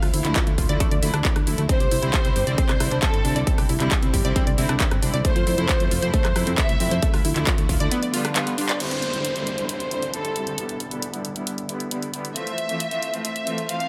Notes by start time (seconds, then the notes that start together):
0.02 D2 F4, cross-stick, open hi-hat
0.14 D2 E4, open hi-hat
0.25 D2 D3 F3 A3 E4, clap, closed hi-hat
0.36 F4, kick, clap, closed hi-hat
0.47 D2 D3 F3 A3 E4, closed hi-hat
0.58 D1 F4, kick, open hi-hat
0.69 D2 D3 F3 A3 E4 D5, closed hi-hat
0.80 A3, kick, closed hi-hat
0.91 D2 D5, closed hi-hat
1.03 D2 D3 F3 A3 E4, open hi-hat
1.14 D2 D4, cross-stick, closed hi-hat
1.25 D3 F3 A3 E4, kick, clap, closed hi-hat
1.36 D2 D4, cross-stick, closed hi-hat
1.47 D2 D3 F3 A3 E4, open hi-hat
1.58 D2 A3, closed hi-hat
1.69 D3 G3 C4 E4 C5, kick, closed hi-hat
1.80 C2 G4, closed hi-hat
1.91 C2 E4, open hi-hat
2.02 C2 D3 G3 C4 E4, closed hi-hat
2.14 G4, kick, clap, closed hi-hat
2.25 C2 D3 G3 C4 E4, closed hi-hat
2.36 G1 G4, open hi-hat
2.47 C2 D3 G3 C4 E4 D5, closed hi-hat
2.58 C4 C5, kick, closed hi-hat
2.69 C2 D5, cross-stick, clap, closed hi-hat
2.80 C2 D3 G3 C4 E4, cross-stick, open hi-hat
2.91 C2 D4, closed hi-hat
3.02 D3 G3 C4 E4 A4 C5, kick, clap, closed hi-hat
3.14 G1 C4, closed hi-hat
3.25 C2 D3 G3 C4 D4 E4, open hi-hat
3.36 C2 D5, closed hi-hat
3.47 D3 G3 C4 E4, kick, closed hi-hat
3.58 C2 G4, cross-stick, open hi-hat
3.69 C2 E4, open hi-hat
3.80 C2 D3 G3 C4 E4, clap, closed hi-hat
3.91 G4, kick, clap, closed hi-hat
4.03 C2 D3 G3 C4 E4, closed hi-hat
4.14 G1 G4, kick, open hi-hat
4.25 C2 D3 G3 C4 E4 D5, closed hi-hat
4.36 C4, kick, closed hi-hat
4.47 C2 D5, closed hi-hat
4.58 C2 D3 G3 C4 E4, open hi-hat
4.69 C2 D4, cross-stick, closed hi-hat
4.80 D3 G3 C4 E4 C5, kick, clap, closed hi-hat
4.91 G1 C4, cross-stick, closed hi-hat
5.02 C2 D3 G3 C4 D4 E4, open hi-hat
5.14 C2 D5, closed hi-hat
5.25 C3 F3 A3 E4 C5, kick, closed hi-hat
5.36 F2 F4, closed hi-hat
5.47 F2 E4, open hi-hat
5.58 F2 C3 F3 A3 E4, closed hi-hat
5.69 F4, kick, clap, closed hi-hat
5.80 F2 C3 F3 A3 E4, closed hi-hat
5.91 F1 F4, open hi-hat
6.02 F2 C3 F3 A3 E4 C5, closed hi-hat
6.14 A3 C5, kick, closed hi-hat
6.25 F2 C5, cross-stick, clap, closed hi-hat
6.36 F2 C3 F3 A3 E4, cross-stick, open hi-hat
6.47 F2 C4, closed hi-hat
6.58 C3 F3 A3 E4 A4 E5, kick, clap, closed hi-hat
6.69 C2 A3, closed hi-hat
6.80 F2 C3 F3 A3 C4 E4, open hi-hat
6.91 F2 C5, closed hi-hat
7.02 D3 F3 A3 E4, kick, closed hi-hat
7.14 D2 F4, cross-stick, open hi-hat
7.25 D2 E4, open hi-hat
7.36 D2 D3 F3 A3 E4, clap, closed hi-hat
7.47 F4, kick, clap, closed hi-hat
7.58 D2 D3 F3 A3 E4, closed hi-hat
7.69 D1 F4, kick, open hi-hat
7.80 D2 D3 F3 A3 E4 D5, closed hi-hat
7.91 B3, closed hi-hat
8.03 D5, closed hi-hat
8.14 D3 G3 B3 F4, open hi-hat
8.25 D4, cross-stick, closed hi-hat
8.36 D3 G3 B3 F4 B4, clap, closed hi-hat
8.47 B3, closed hi-hat
8.58 D3 G3 B3 D4 F4, open hi-hat
8.69 D5, clap, closed hi-hat
8.80 D3 G3 C4 E4 C5, closed hi-hat, crash, downlifter
8.91 closed hi-hat
9.02 closed hi-hat
9.13 D3 G3 C4 E4, closed hi-hat
9.25 closed hi-hat
9.36 D3 G3 C4 E4, closed hi-hat
9.47 closed hi-hat
9.58 D3 G3 C4 E4, closed hi-hat
9.69 C5, closed hi-hat
9.80 closed hi-hat
9.91 D3 G3 C4 E4, closed hi-hat
10.02 closed hi-hat
10.14 D3 G3 C4 E4 A4, closed hi-hat
10.25 closed hi-hat
10.36 D3 G3 C4 E4, closed hi-hat
10.47 closed hi-hat
10.58 D3 G3 B3 E4, closed hi-hat
10.69 closed hi-hat
10.80 closed hi-hat
10.91 D3 G3 B3 E4, closed hi-hat
11.02 closed hi-hat
11.14 D3 G3 B3 E4, closed hi-hat
11.25 closed hi-hat
11.36 D3 G3 B3 E4, closed hi-hat
11.47 closed hi-hat
11.58 closed hi-hat
11.69 D3 G3 B3 E4, closed hi-hat
11.80 closed hi-hat
11.91 D3 G3 B3 E4, closed hi-hat
12.03 closed hi-hat
12.14 D3 G3 B3 E4, closed hi-hat
12.25 closed hi-hat
12.36 E3 A3 C4 F4 E5, closed hi-hat
12.47 closed hi-hat
12.58 closed hi-hat
12.69 E3 A3 C4 F4, closed hi-hat
12.80 closed hi-hat
12.91 E3 A3 C4 F4, closed hi-hat
13.03 closed hi-hat
13.14 E3 A3 C4 F4, closed hi-hat
13.25 E5, closed hi-hat
13.36 closed hi-hat
13.47 E3 A3 C4 F4, closed hi-hat
13.58 closed hi-hat
13.69 E3 A3 C4 F4 F5, closed hi-hat
13.80 closed hi-hat